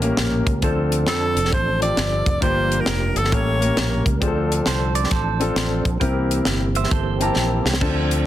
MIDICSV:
0, 0, Header, 1, 7, 480
1, 0, Start_track
1, 0, Tempo, 449438
1, 664, Time_signature, 4, 2, 24, 8
1, 8825, End_track
2, 0, Start_track
2, 0, Title_t, "Alto saxophone"
2, 0, Program_c, 0, 65
2, 1153, Note_on_c, 0, 69, 82
2, 1595, Note_off_c, 0, 69, 0
2, 1641, Note_on_c, 0, 72, 91
2, 1923, Note_off_c, 0, 72, 0
2, 1949, Note_on_c, 0, 74, 98
2, 2547, Note_off_c, 0, 74, 0
2, 2592, Note_on_c, 0, 72, 96
2, 2992, Note_on_c, 0, 70, 81
2, 3008, Note_off_c, 0, 72, 0
2, 3387, Note_on_c, 0, 69, 84
2, 3403, Note_off_c, 0, 70, 0
2, 3563, Note_on_c, 0, 73, 91
2, 3579, Note_off_c, 0, 69, 0
2, 4344, Note_off_c, 0, 73, 0
2, 8825, End_track
3, 0, Start_track
3, 0, Title_t, "Clean electric guitar"
3, 0, Program_c, 1, 27
3, 4986, Note_on_c, 1, 69, 58
3, 4992, Note_on_c, 1, 72, 62
3, 5281, Note_off_c, 1, 72, 0
3, 5282, Note_off_c, 1, 69, 0
3, 5290, Note_on_c, 1, 74, 73
3, 5451, Note_off_c, 1, 74, 0
3, 5465, Note_on_c, 1, 69, 62
3, 5467, Note_on_c, 1, 72, 57
3, 6215, Note_off_c, 1, 72, 0
3, 6217, Note_off_c, 1, 69, 0
3, 7224, Note_on_c, 1, 76, 67
3, 7228, Note_on_c, 1, 72, 62
3, 7376, Note_off_c, 1, 72, 0
3, 7379, Note_off_c, 1, 76, 0
3, 7388, Note_on_c, 1, 72, 72
3, 7395, Note_on_c, 1, 69, 64
3, 7682, Note_off_c, 1, 72, 0
3, 7686, Note_off_c, 1, 69, 0
3, 7713, Note_on_c, 1, 70, 72
3, 7720, Note_on_c, 1, 67, 60
3, 8321, Note_off_c, 1, 70, 0
3, 8325, Note_off_c, 1, 67, 0
3, 8825, End_track
4, 0, Start_track
4, 0, Title_t, "Grand piano"
4, 0, Program_c, 2, 0
4, 0, Note_on_c, 2, 45, 66
4, 20, Note_on_c, 2, 58, 80
4, 21, Note_on_c, 2, 61, 74
4, 31, Note_on_c, 2, 67, 72
4, 34, Note_on_c, 2, 70, 88
4, 453, Note_off_c, 2, 45, 0
4, 495, Note_off_c, 2, 58, 0
4, 495, Note_off_c, 2, 61, 0
4, 500, Note_off_c, 2, 67, 0
4, 502, Note_off_c, 2, 70, 0
4, 668, Note_on_c, 2, 60, 78
4, 673, Note_on_c, 2, 50, 71
4, 674, Note_on_c, 2, 62, 70
4, 676, Note_on_c, 2, 65, 73
4, 681, Note_on_c, 2, 69, 85
4, 1349, Note_off_c, 2, 60, 0
4, 1353, Note_off_c, 2, 62, 0
4, 1354, Note_off_c, 2, 65, 0
4, 1356, Note_off_c, 2, 69, 0
4, 1418, Note_off_c, 2, 50, 0
4, 1928, Note_on_c, 2, 60, 70
4, 1933, Note_on_c, 2, 62, 59
4, 1937, Note_on_c, 2, 65, 59
4, 1947, Note_on_c, 2, 67, 68
4, 2409, Note_off_c, 2, 60, 0
4, 2411, Note_off_c, 2, 62, 0
4, 2413, Note_off_c, 2, 65, 0
4, 2418, Note_off_c, 2, 67, 0
4, 2569, Note_on_c, 2, 58, 69
4, 2577, Note_on_c, 2, 62, 65
4, 2582, Note_on_c, 2, 65, 62
4, 2583, Note_on_c, 2, 43, 61
4, 2587, Note_on_c, 2, 67, 74
4, 3259, Note_off_c, 2, 58, 0
4, 3263, Note_off_c, 2, 62, 0
4, 3266, Note_off_c, 2, 65, 0
4, 3268, Note_off_c, 2, 67, 0
4, 3332, Note_off_c, 2, 43, 0
4, 3541, Note_on_c, 2, 58, 68
4, 3547, Note_on_c, 2, 61, 64
4, 3549, Note_on_c, 2, 45, 59
4, 3551, Note_on_c, 2, 67, 62
4, 3554, Note_on_c, 2, 69, 74
4, 3791, Note_off_c, 2, 58, 0
4, 3794, Note_off_c, 2, 61, 0
4, 3796, Note_off_c, 2, 67, 0
4, 3798, Note_off_c, 2, 69, 0
4, 3851, Note_on_c, 2, 58, 71
4, 3857, Note_on_c, 2, 61, 62
4, 3863, Note_on_c, 2, 67, 62
4, 3866, Note_on_c, 2, 70, 74
4, 4295, Note_off_c, 2, 45, 0
4, 4329, Note_off_c, 2, 58, 0
4, 4332, Note_off_c, 2, 61, 0
4, 4335, Note_off_c, 2, 67, 0
4, 4337, Note_off_c, 2, 70, 0
4, 4493, Note_on_c, 2, 60, 78
4, 4500, Note_on_c, 2, 62, 75
4, 4503, Note_on_c, 2, 50, 75
4, 4507, Note_on_c, 2, 65, 75
4, 4510, Note_on_c, 2, 68, 75
4, 4567, Note_on_c, 2, 69, 88
4, 4581, Note_off_c, 2, 68, 0
4, 5181, Note_off_c, 2, 60, 0
4, 5184, Note_off_c, 2, 62, 0
4, 5188, Note_off_c, 2, 65, 0
4, 5218, Note_off_c, 2, 69, 0
4, 5251, Note_off_c, 2, 50, 0
4, 5764, Note_on_c, 2, 60, 85
4, 5770, Note_on_c, 2, 62, 72
4, 5773, Note_on_c, 2, 65, 78
4, 5783, Note_on_c, 2, 69, 91
4, 6246, Note_off_c, 2, 60, 0
4, 6249, Note_off_c, 2, 62, 0
4, 6250, Note_off_c, 2, 65, 0
4, 6255, Note_off_c, 2, 69, 0
4, 6415, Note_on_c, 2, 60, 81
4, 6422, Note_on_c, 2, 64, 73
4, 6425, Note_on_c, 2, 48, 71
4, 6427, Note_on_c, 2, 67, 74
4, 6434, Note_on_c, 2, 70, 85
4, 7103, Note_off_c, 2, 60, 0
4, 7106, Note_off_c, 2, 64, 0
4, 7109, Note_off_c, 2, 67, 0
4, 7112, Note_off_c, 2, 70, 0
4, 7173, Note_off_c, 2, 48, 0
4, 7691, Note_on_c, 2, 60, 76
4, 7699, Note_on_c, 2, 64, 69
4, 7704, Note_on_c, 2, 67, 72
4, 7709, Note_on_c, 2, 81, 85
4, 8170, Note_off_c, 2, 60, 0
4, 8174, Note_off_c, 2, 64, 0
4, 8177, Note_off_c, 2, 67, 0
4, 8179, Note_off_c, 2, 81, 0
4, 8337, Note_on_c, 2, 60, 81
4, 8343, Note_on_c, 2, 62, 68
4, 8345, Note_on_c, 2, 50, 70
4, 8351, Note_on_c, 2, 65, 70
4, 8351, Note_on_c, 2, 69, 83
4, 8825, Note_off_c, 2, 50, 0
4, 8825, Note_off_c, 2, 60, 0
4, 8825, Note_off_c, 2, 62, 0
4, 8825, Note_off_c, 2, 65, 0
4, 8825, Note_off_c, 2, 69, 0
4, 8825, End_track
5, 0, Start_track
5, 0, Title_t, "Tonewheel organ"
5, 0, Program_c, 3, 16
5, 0, Note_on_c, 3, 55, 66
5, 0, Note_on_c, 3, 58, 63
5, 0, Note_on_c, 3, 61, 63
5, 0, Note_on_c, 3, 70, 80
5, 654, Note_off_c, 3, 58, 0
5, 655, Note_off_c, 3, 55, 0
5, 657, Note_off_c, 3, 70, 0
5, 659, Note_off_c, 3, 61, 0
5, 674, Note_on_c, 3, 62, 66
5, 680, Note_on_c, 3, 69, 82
5, 684, Note_on_c, 3, 60, 59
5, 685, Note_on_c, 3, 53, 68
5, 2550, Note_off_c, 3, 62, 0
5, 2553, Note_off_c, 3, 69, 0
5, 2555, Note_off_c, 3, 60, 0
5, 2556, Note_off_c, 3, 53, 0
5, 2585, Note_on_c, 3, 53, 61
5, 2585, Note_on_c, 3, 58, 58
5, 2586, Note_on_c, 3, 67, 65
5, 2593, Note_on_c, 3, 62, 58
5, 3524, Note_off_c, 3, 58, 0
5, 3525, Note_off_c, 3, 53, 0
5, 3525, Note_off_c, 3, 67, 0
5, 3528, Note_off_c, 3, 62, 0
5, 3551, Note_on_c, 3, 58, 56
5, 3554, Note_on_c, 3, 70, 62
5, 3557, Note_on_c, 3, 55, 61
5, 3558, Note_on_c, 3, 61, 56
5, 4487, Note_off_c, 3, 58, 0
5, 4489, Note_off_c, 3, 70, 0
5, 4490, Note_off_c, 3, 55, 0
5, 4491, Note_off_c, 3, 61, 0
5, 4502, Note_on_c, 3, 69, 80
5, 4506, Note_on_c, 3, 60, 65
5, 4508, Note_on_c, 3, 62, 64
5, 4513, Note_on_c, 3, 53, 71
5, 6384, Note_off_c, 3, 69, 0
5, 6386, Note_off_c, 3, 60, 0
5, 6387, Note_off_c, 3, 62, 0
5, 6389, Note_off_c, 3, 53, 0
5, 6406, Note_on_c, 3, 67, 82
5, 6408, Note_on_c, 3, 52, 68
5, 6410, Note_on_c, 3, 60, 68
5, 6412, Note_on_c, 3, 58, 63
5, 8297, Note_off_c, 3, 67, 0
5, 8298, Note_off_c, 3, 52, 0
5, 8299, Note_off_c, 3, 60, 0
5, 8301, Note_off_c, 3, 58, 0
5, 8348, Note_on_c, 3, 60, 64
5, 8350, Note_on_c, 3, 62, 64
5, 8353, Note_on_c, 3, 69, 79
5, 8356, Note_on_c, 3, 53, 67
5, 8825, Note_off_c, 3, 53, 0
5, 8825, Note_off_c, 3, 60, 0
5, 8825, Note_off_c, 3, 62, 0
5, 8825, Note_off_c, 3, 69, 0
5, 8825, End_track
6, 0, Start_track
6, 0, Title_t, "Fingered electric bass"
6, 0, Program_c, 4, 33
6, 0, Note_on_c, 4, 33, 81
6, 115, Note_off_c, 4, 33, 0
6, 197, Note_on_c, 4, 34, 86
6, 457, Note_off_c, 4, 34, 0
6, 496, Note_on_c, 4, 37, 80
6, 639, Note_off_c, 4, 37, 0
6, 669, Note_on_c, 4, 38, 93
6, 1144, Note_off_c, 4, 38, 0
6, 1144, Note_on_c, 4, 41, 87
6, 1454, Note_on_c, 4, 29, 81
6, 1470, Note_off_c, 4, 41, 0
6, 1598, Note_off_c, 4, 29, 0
6, 1630, Note_on_c, 4, 33, 74
6, 2035, Note_off_c, 4, 33, 0
6, 2105, Note_on_c, 4, 31, 88
6, 2370, Note_off_c, 4, 31, 0
6, 2418, Note_on_c, 4, 29, 71
6, 2560, Note_off_c, 4, 29, 0
6, 2584, Note_on_c, 4, 31, 91
6, 2992, Note_off_c, 4, 31, 0
6, 3066, Note_on_c, 4, 29, 82
6, 3330, Note_off_c, 4, 29, 0
6, 3375, Note_on_c, 4, 31, 85
6, 3550, Note_off_c, 4, 31, 0
6, 3550, Note_on_c, 4, 33, 91
6, 3955, Note_off_c, 4, 33, 0
6, 4026, Note_on_c, 4, 34, 79
6, 4289, Note_off_c, 4, 34, 0
6, 4336, Note_on_c, 4, 37, 75
6, 4478, Note_off_c, 4, 37, 0
6, 4504, Note_on_c, 4, 38, 109
6, 4911, Note_off_c, 4, 38, 0
6, 4984, Note_on_c, 4, 36, 81
6, 5391, Note_off_c, 4, 36, 0
6, 5464, Note_on_c, 4, 33, 79
6, 5871, Note_off_c, 4, 33, 0
6, 5937, Note_on_c, 4, 33, 94
6, 6205, Note_off_c, 4, 33, 0
6, 6250, Note_on_c, 4, 34, 76
6, 6394, Note_off_c, 4, 34, 0
6, 6419, Note_on_c, 4, 36, 94
6, 6828, Note_off_c, 4, 36, 0
6, 6902, Note_on_c, 4, 31, 90
6, 7310, Note_off_c, 4, 31, 0
6, 7385, Note_on_c, 4, 31, 80
6, 7792, Note_off_c, 4, 31, 0
6, 7860, Note_on_c, 4, 34, 85
6, 8127, Note_off_c, 4, 34, 0
6, 8171, Note_on_c, 4, 36, 76
6, 8345, Note_off_c, 4, 36, 0
6, 8345, Note_on_c, 4, 38, 94
6, 8822, Note_off_c, 4, 38, 0
6, 8825, End_track
7, 0, Start_track
7, 0, Title_t, "Drums"
7, 21, Note_on_c, 9, 42, 70
7, 128, Note_off_c, 9, 42, 0
7, 185, Note_on_c, 9, 38, 111
7, 185, Note_on_c, 9, 42, 69
7, 292, Note_off_c, 9, 38, 0
7, 292, Note_off_c, 9, 42, 0
7, 498, Note_on_c, 9, 36, 81
7, 499, Note_on_c, 9, 42, 60
7, 605, Note_off_c, 9, 36, 0
7, 605, Note_off_c, 9, 42, 0
7, 664, Note_on_c, 9, 42, 76
7, 667, Note_on_c, 9, 36, 93
7, 771, Note_off_c, 9, 42, 0
7, 774, Note_off_c, 9, 36, 0
7, 982, Note_on_c, 9, 42, 66
7, 1089, Note_off_c, 9, 42, 0
7, 1138, Note_on_c, 9, 38, 106
7, 1149, Note_on_c, 9, 42, 83
7, 1245, Note_off_c, 9, 38, 0
7, 1256, Note_off_c, 9, 42, 0
7, 1461, Note_on_c, 9, 42, 66
7, 1548, Note_on_c, 9, 38, 31
7, 1567, Note_off_c, 9, 42, 0
7, 1628, Note_on_c, 9, 42, 64
7, 1629, Note_on_c, 9, 36, 94
7, 1654, Note_off_c, 9, 38, 0
7, 1735, Note_off_c, 9, 42, 0
7, 1736, Note_off_c, 9, 36, 0
7, 1943, Note_on_c, 9, 42, 71
7, 2050, Note_off_c, 9, 42, 0
7, 2108, Note_on_c, 9, 38, 105
7, 2108, Note_on_c, 9, 42, 73
7, 2214, Note_off_c, 9, 42, 0
7, 2215, Note_off_c, 9, 38, 0
7, 2417, Note_on_c, 9, 36, 89
7, 2417, Note_on_c, 9, 42, 63
7, 2524, Note_off_c, 9, 36, 0
7, 2524, Note_off_c, 9, 42, 0
7, 2584, Note_on_c, 9, 42, 79
7, 2585, Note_on_c, 9, 36, 98
7, 2691, Note_off_c, 9, 36, 0
7, 2691, Note_off_c, 9, 42, 0
7, 2902, Note_on_c, 9, 42, 69
7, 3009, Note_off_c, 9, 42, 0
7, 3056, Note_on_c, 9, 38, 101
7, 3067, Note_on_c, 9, 42, 84
7, 3163, Note_off_c, 9, 38, 0
7, 3174, Note_off_c, 9, 42, 0
7, 3376, Note_on_c, 9, 42, 62
7, 3465, Note_on_c, 9, 38, 32
7, 3483, Note_off_c, 9, 42, 0
7, 3549, Note_on_c, 9, 36, 90
7, 3551, Note_on_c, 9, 42, 71
7, 3572, Note_off_c, 9, 38, 0
7, 3656, Note_off_c, 9, 36, 0
7, 3658, Note_off_c, 9, 42, 0
7, 3866, Note_on_c, 9, 42, 64
7, 3973, Note_off_c, 9, 42, 0
7, 4027, Note_on_c, 9, 42, 76
7, 4028, Note_on_c, 9, 38, 113
7, 4134, Note_off_c, 9, 38, 0
7, 4134, Note_off_c, 9, 42, 0
7, 4334, Note_on_c, 9, 36, 80
7, 4339, Note_on_c, 9, 42, 65
7, 4441, Note_off_c, 9, 36, 0
7, 4446, Note_off_c, 9, 42, 0
7, 4503, Note_on_c, 9, 36, 99
7, 4507, Note_on_c, 9, 42, 81
7, 4610, Note_off_c, 9, 36, 0
7, 4614, Note_off_c, 9, 42, 0
7, 4825, Note_on_c, 9, 42, 70
7, 4932, Note_off_c, 9, 42, 0
7, 4974, Note_on_c, 9, 38, 104
7, 4985, Note_on_c, 9, 42, 83
7, 5081, Note_off_c, 9, 38, 0
7, 5092, Note_off_c, 9, 42, 0
7, 5289, Note_on_c, 9, 42, 65
7, 5380, Note_on_c, 9, 38, 30
7, 5396, Note_off_c, 9, 42, 0
7, 5456, Note_on_c, 9, 42, 73
7, 5459, Note_off_c, 9, 38, 0
7, 5459, Note_on_c, 9, 38, 31
7, 5461, Note_on_c, 9, 36, 97
7, 5563, Note_off_c, 9, 42, 0
7, 5566, Note_off_c, 9, 38, 0
7, 5568, Note_off_c, 9, 36, 0
7, 5774, Note_on_c, 9, 42, 63
7, 5881, Note_off_c, 9, 42, 0
7, 5941, Note_on_c, 9, 42, 78
7, 5942, Note_on_c, 9, 38, 106
7, 6048, Note_off_c, 9, 38, 0
7, 6048, Note_off_c, 9, 42, 0
7, 6251, Note_on_c, 9, 36, 89
7, 6251, Note_on_c, 9, 42, 57
7, 6357, Note_off_c, 9, 36, 0
7, 6358, Note_off_c, 9, 42, 0
7, 6418, Note_on_c, 9, 36, 99
7, 6422, Note_on_c, 9, 42, 80
7, 6525, Note_off_c, 9, 36, 0
7, 6529, Note_off_c, 9, 42, 0
7, 6740, Note_on_c, 9, 42, 66
7, 6846, Note_off_c, 9, 42, 0
7, 6892, Note_on_c, 9, 38, 105
7, 6903, Note_on_c, 9, 42, 85
7, 6999, Note_off_c, 9, 38, 0
7, 7010, Note_off_c, 9, 42, 0
7, 7212, Note_on_c, 9, 42, 61
7, 7301, Note_on_c, 9, 38, 31
7, 7318, Note_off_c, 9, 42, 0
7, 7383, Note_on_c, 9, 42, 66
7, 7384, Note_on_c, 9, 36, 88
7, 7408, Note_off_c, 9, 38, 0
7, 7489, Note_off_c, 9, 42, 0
7, 7491, Note_off_c, 9, 36, 0
7, 7697, Note_on_c, 9, 42, 65
7, 7804, Note_off_c, 9, 42, 0
7, 7859, Note_on_c, 9, 38, 53
7, 7966, Note_off_c, 9, 38, 0
7, 8178, Note_on_c, 9, 38, 77
7, 8262, Note_off_c, 9, 38, 0
7, 8262, Note_on_c, 9, 38, 89
7, 8345, Note_on_c, 9, 36, 97
7, 8345, Note_on_c, 9, 49, 71
7, 8369, Note_off_c, 9, 38, 0
7, 8451, Note_off_c, 9, 36, 0
7, 8452, Note_off_c, 9, 49, 0
7, 8664, Note_on_c, 9, 42, 69
7, 8771, Note_off_c, 9, 42, 0
7, 8825, End_track
0, 0, End_of_file